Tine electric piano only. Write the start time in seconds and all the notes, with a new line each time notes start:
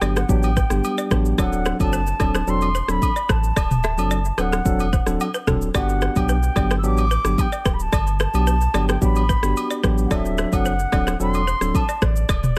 0.01 F#3 B3 D4 G4
0.29 F#3 B3 D4 G4
0.70 G3 B3 D4 G4
1.11 F#3 B3 D4 G4
1.38 F#3 C4 D4 A4
1.80 F#3 C4 D4 A4
2.20 F#3 C4 D4 A4
2.47 F#3 C4 D4 A4
2.89 F#3 C4 D4 A4
3.98 F#3 C4 D4 A4
4.38 F#3 C4 D4 A4
4.65 F#3 C4 D4 A4
5.07 F#3 C4 D4 A4
5.47 F#3 C4 D4 A4
5.75 B3 D4 F#4 G4
6.16 F#3 B3 D4 G4
6.56 F#3 B3 D4 G4
6.83 F#3 B3 D4 G4
7.25 F#3 B3 D4 G4
8.34 F#3 B3 D4 G4
8.74 F#3 B3 D4 G4
9.02 F#3 B3 D4 G4
9.43 B3 D4 F#4 G4
9.83 F#3 B3 D4 G4
10.11 F#3 C4 D4 A4
10.52 F#3 C4 D4 A4
10.92 F#3 C4 D4 A4
11.20 F#3 C4 D4 A4
11.61 F#3 C4 D4 A4